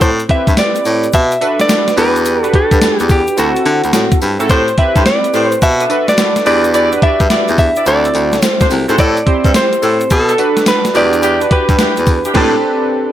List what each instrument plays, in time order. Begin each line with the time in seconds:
0.01 baritone saxophone A2, clean electric guitar C5, kick, closed hi-hat, tambourine, shaker
0.19 closed hi-hat, shaker
0.29 synth keys C4 E4 G4 B4, clean electric guitar E5, kick, closed hi-hat
0.47 baritone saxophone G2, kick, closed hi-hat, shaker
0.57 clean electric guitar D5, snare, closed hi-hat, tambourine, shaker
0.75 closed hi-hat, shaker
0.85 baritone saxophone A2, open hi-hat, tambourine, shaker
1.03 closed hi-hat, shaker
1.13 baritone saxophone B2, clean electric guitar E5, kick, closed hi-hat, tambourine, shaker
1.31 closed hi-hat, shaker
1.41 synth keys D4 F#4 A4 B4, closed hi-hat, tambourine
1.60 clean electric guitar D5, snare, closed hi-hat, shaker
1.69 snare, closed hi-hat, tambourine, shaker
1.88 snare, closed hi-hat, shaker
1.96 baritone saxophone E2, synth keys D4 F#4 G4 B4, clean electric guitar B4, open hi-hat, tambourine, shaker
2.16 closed hi-hat, shaker
2.25 closed hi-hat, tambourine, shaker
2.43 synth keys D4 F#4 G4 B4, clean electric guitar A4, closed hi-hat, shaker
2.53 synth keys D4 F#4 G4 B4, clean electric guitar A4, kick, closed hi-hat
2.71 baritone saxophone G2, kick, closed hi-hat, shaker
2.81 baritone saxophone E2, snare, closed hi-hat, tambourine, shaker
2.99 baritone saxophone E2, clean electric guitar G4, closed hi-hat, shaker
3.09 clean electric guitar G4, kick, open hi-hat, tambourine, shaker
3.27 closed hi-hat, shaker
3.37 baritone saxophone D2, synth keys C4 E4 F#4 A4, clean electric guitar F#4, closed hi-hat, tambourine, shaker
3.56 closed hi-hat, shaker
3.65 baritone saxophone D3, closed hi-hat, tambourine
3.84 baritone saxophone D2, closed hi-hat, shaker
3.93 baritone saxophone A2, snare, closed hi-hat, tambourine, shaker
4.12 kick, closed hi-hat, shaker
4.22 baritone saxophone G2, open hi-hat, tambourine, shaker
4.39 baritone saxophone G#2, synth keys C4 E4 F#4 A4, closed hi-hat, shaker
4.49 baritone saxophone A2, horn section G4 A4 C5, clean electric guitar C5, kick, closed hi-hat, tambourine, shaker
4.68 closed hi-hat, shaker
4.78 synth keys C4 E4 G4 B4, clean electric guitar E5, kick, closed hi-hat
4.96 baritone saxophone G2, horn section G4 A4 C5, kick, closed hi-hat, shaker
5.06 clean electric guitar D5, snare, closed hi-hat, tambourine, shaker
5.24 closed hi-hat, shaker
5.33 baritone saxophone A2, horn section G4 A4 C5, open hi-hat, tambourine, shaker
5.51 clean electric guitar C5, closed hi-hat, shaker
5.62 baritone saxophone B2, clean electric guitar E5, kick, closed hi-hat, tambourine, shaker
5.80 horn section D4 A4 B4, closed hi-hat, shaker
5.89 synth keys D4 F#4 A4 B4, closed hi-hat, tambourine
6.08 clean electric guitar D5, snare, closed hi-hat, shaker
6.18 snare, closed hi-hat, tambourine, shaker
6.36 snare, closed hi-hat, shaker
6.45 baritone saxophone E2, synth keys D4 F#4 G4 B4, horn section E4 G4 D5, clean electric guitar D5, open hi-hat, tambourine, shaker
6.64 closed hi-hat, shaker
6.73 horn section E4 G4 D5, closed hi-hat, tambourine, shaker
6.92 synth keys D4 F#4 G4 B4, closed hi-hat, shaker
7.02 synth keys D4 F#4 G4 B4, horn section E4 G4 D5, clean electric guitar E5, kick, closed hi-hat
7.20 baritone saxophone G2, kick, closed hi-hat, shaker
7.30 baritone saxophone E2, horn section E4 G4 D5, snare, closed hi-hat, tambourine, shaker
7.48 baritone saxophone E2, closed hi-hat, shaker
7.58 clean electric guitar E5, kick, open hi-hat, tambourine, shaker
7.76 horn section E4 G4 D5, closed hi-hat, shaker
7.86 baritone saxophone D2, synth keys C4 E4 F#4 A4, clean electric guitar D5, closed hi-hat, tambourine, shaker
8.04 closed hi-hat, shaker
8.15 baritone saxophone D2, closed hi-hat, tambourine
8.33 snare, closed hi-hat, shaker
8.42 clean electric guitar C5, snare, closed hi-hat, tambourine, shaker
8.60 horn section D4 F#4 C5, kick, snare, closed hi-hat, shaker
8.70 baritone saxophone C2, open hi-hat, tambourine, shaker
8.88 baritone saxophone G#2, synth keys C4 E4 F#4 A4, horn section D4 F#4 C5, closed hi-hat, shaker
8.98 baritone saxophone A2, horn section C4 G4 A4, clean electric guitar D5, kick, closed hi-hat, tambourine, shaker
9.17 closed hi-hat, shaker
9.26 synth keys C4 E4 G4 C5, kick, closed hi-hat
9.44 baritone saxophone G2, horn section C4 G4 A4, kick, closed hi-hat, shaker
9.54 clean electric guitar C5, snare, closed hi-hat, tambourine, shaker
9.73 closed hi-hat, shaker
9.82 baritone saxophone A2, horn section C4 G4 A4, open hi-hat, tambourine, shaker
10.01 closed hi-hat, shaker
10.10 baritone saxophone B2, clean electric guitar A4, kick, closed hi-hat, tambourine, shaker
10.28 horn section B3 D4 A4, closed hi-hat, shaker
10.38 synth keys D4 F#4 A4 B4, closed hi-hat, tambourine
10.57 snare, closed hi-hat, shaker
10.66 clean electric guitar B4, snare, closed hi-hat, tambourine, shaker
10.85 snare, closed hi-hat, shaker
10.94 baritone saxophone E2, horn section D4 E4 G4, synth keys D4 F#4 G4 B4, clean electric guitar D5, open hi-hat, tambourine, shaker
11.13 closed hi-hat, shaker
11.22 horn section D4 E4 G4, closed hi-hat, tambourine, shaker
11.40 synth keys D4 F#4 G4 B4, closed hi-hat, shaker
11.50 synth keys D4 F#4 G4 B4, horn section D4 E4 G4, clean electric guitar B4, kick, closed hi-hat
11.69 baritone saxophone G2, kick, closed hi-hat, shaker
11.78 baritone saxophone E2, horn section D4 E4 G4, snare, closed hi-hat, tambourine, shaker
11.97 baritone saxophone E2, closed hi-hat, shaker
12.06 kick, open hi-hat, tambourine, shaker
12.25 horn section D4 E4 G4, closed hi-hat, shaker
12.34 baritone saxophone A2, synth keys C4 D4 G4 B4, horn section C4 D4 G4 B4, clean electric guitar A4, kick, snare, crash